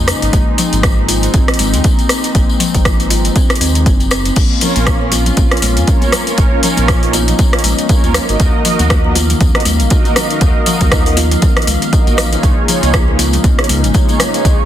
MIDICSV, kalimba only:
0, 0, Header, 1, 2, 480
1, 0, Start_track
1, 0, Key_signature, -5, "minor"
1, 0, Tempo, 504202
1, 314, Time_signature, 4, 2, 24, 8
1, 13950, End_track
2, 0, Start_track
2, 0, Title_t, "Kalimba"
2, 0, Program_c, 0, 108
2, 77, Note_on_c, 0, 61, 77
2, 200, Note_off_c, 0, 61, 0
2, 316, Note_on_c, 0, 58, 100
2, 390, Note_off_c, 0, 58, 0
2, 554, Note_on_c, 0, 53, 102
2, 678, Note_off_c, 0, 53, 0
2, 795, Note_on_c, 0, 65, 81
2, 919, Note_off_c, 0, 65, 0
2, 1035, Note_on_c, 0, 65, 105
2, 1166, Note_off_c, 0, 65, 0
2, 1274, Note_on_c, 0, 60, 81
2, 1405, Note_off_c, 0, 60, 0
2, 1516, Note_on_c, 0, 56, 76
2, 1590, Note_off_c, 0, 56, 0
2, 1754, Note_on_c, 0, 58, 83
2, 1878, Note_off_c, 0, 58, 0
2, 1996, Note_on_c, 0, 60, 74
2, 2119, Note_off_c, 0, 60, 0
2, 2238, Note_on_c, 0, 58, 100
2, 2311, Note_off_c, 0, 58, 0
2, 2474, Note_on_c, 0, 53, 100
2, 2598, Note_off_c, 0, 53, 0
2, 2717, Note_on_c, 0, 65, 80
2, 2840, Note_off_c, 0, 65, 0
2, 2955, Note_on_c, 0, 65, 99
2, 3086, Note_off_c, 0, 65, 0
2, 3195, Note_on_c, 0, 60, 84
2, 3326, Note_off_c, 0, 60, 0
2, 3434, Note_on_c, 0, 60, 105
2, 3509, Note_off_c, 0, 60, 0
2, 3675, Note_on_c, 0, 60, 84
2, 3799, Note_off_c, 0, 60, 0
2, 3916, Note_on_c, 0, 60, 100
2, 4046, Note_off_c, 0, 60, 0
2, 4155, Note_on_c, 0, 58, 99
2, 4229, Note_off_c, 0, 58, 0
2, 4396, Note_on_c, 0, 53, 99
2, 4519, Note_off_c, 0, 53, 0
2, 4634, Note_on_c, 0, 65, 84
2, 4758, Note_off_c, 0, 65, 0
2, 4773, Note_on_c, 0, 70, 81
2, 4865, Note_off_c, 0, 70, 0
2, 4873, Note_on_c, 0, 65, 98
2, 5005, Note_off_c, 0, 65, 0
2, 5115, Note_on_c, 0, 61, 83
2, 5245, Note_off_c, 0, 61, 0
2, 5355, Note_on_c, 0, 56, 77
2, 5429, Note_off_c, 0, 56, 0
2, 5594, Note_on_c, 0, 58, 85
2, 5718, Note_off_c, 0, 58, 0
2, 5837, Note_on_c, 0, 61, 78
2, 5960, Note_off_c, 0, 61, 0
2, 6075, Note_on_c, 0, 58, 99
2, 6149, Note_off_c, 0, 58, 0
2, 6316, Note_on_c, 0, 53, 100
2, 6439, Note_off_c, 0, 53, 0
2, 6556, Note_on_c, 0, 65, 85
2, 6679, Note_off_c, 0, 65, 0
2, 6693, Note_on_c, 0, 70, 78
2, 6785, Note_off_c, 0, 70, 0
2, 6795, Note_on_c, 0, 65, 98
2, 6926, Note_off_c, 0, 65, 0
2, 7035, Note_on_c, 0, 61, 81
2, 7166, Note_off_c, 0, 61, 0
2, 7275, Note_on_c, 0, 56, 78
2, 7349, Note_off_c, 0, 56, 0
2, 7515, Note_on_c, 0, 58, 88
2, 7639, Note_off_c, 0, 58, 0
2, 7756, Note_on_c, 0, 61, 80
2, 7879, Note_off_c, 0, 61, 0
2, 7995, Note_on_c, 0, 58, 104
2, 8069, Note_off_c, 0, 58, 0
2, 8234, Note_on_c, 0, 53, 98
2, 8358, Note_off_c, 0, 53, 0
2, 8473, Note_on_c, 0, 65, 82
2, 8598, Note_off_c, 0, 65, 0
2, 8611, Note_on_c, 0, 70, 79
2, 8704, Note_off_c, 0, 70, 0
2, 8714, Note_on_c, 0, 65, 103
2, 8845, Note_off_c, 0, 65, 0
2, 8953, Note_on_c, 0, 61, 85
2, 9085, Note_off_c, 0, 61, 0
2, 9193, Note_on_c, 0, 56, 81
2, 9268, Note_off_c, 0, 56, 0
2, 9433, Note_on_c, 0, 58, 86
2, 9558, Note_off_c, 0, 58, 0
2, 9673, Note_on_c, 0, 61, 79
2, 9798, Note_off_c, 0, 61, 0
2, 9912, Note_on_c, 0, 58, 100
2, 9988, Note_off_c, 0, 58, 0
2, 10152, Note_on_c, 0, 53, 104
2, 10277, Note_off_c, 0, 53, 0
2, 10392, Note_on_c, 0, 65, 84
2, 10517, Note_off_c, 0, 65, 0
2, 10530, Note_on_c, 0, 70, 80
2, 10623, Note_off_c, 0, 70, 0
2, 10632, Note_on_c, 0, 65, 104
2, 10764, Note_off_c, 0, 65, 0
2, 10873, Note_on_c, 0, 61, 86
2, 11005, Note_off_c, 0, 61, 0
2, 11115, Note_on_c, 0, 56, 78
2, 11189, Note_off_c, 0, 56, 0
2, 11354, Note_on_c, 0, 58, 84
2, 11478, Note_off_c, 0, 58, 0
2, 11835, Note_on_c, 0, 58, 99
2, 11909, Note_off_c, 0, 58, 0
2, 12074, Note_on_c, 0, 53, 102
2, 12199, Note_off_c, 0, 53, 0
2, 12314, Note_on_c, 0, 65, 83
2, 12438, Note_off_c, 0, 65, 0
2, 12453, Note_on_c, 0, 70, 78
2, 12545, Note_off_c, 0, 70, 0
2, 12556, Note_on_c, 0, 65, 102
2, 12686, Note_off_c, 0, 65, 0
2, 12796, Note_on_c, 0, 61, 83
2, 12926, Note_off_c, 0, 61, 0
2, 13036, Note_on_c, 0, 56, 79
2, 13110, Note_off_c, 0, 56, 0
2, 13275, Note_on_c, 0, 58, 84
2, 13399, Note_off_c, 0, 58, 0
2, 13516, Note_on_c, 0, 61, 76
2, 13639, Note_off_c, 0, 61, 0
2, 13950, End_track
0, 0, End_of_file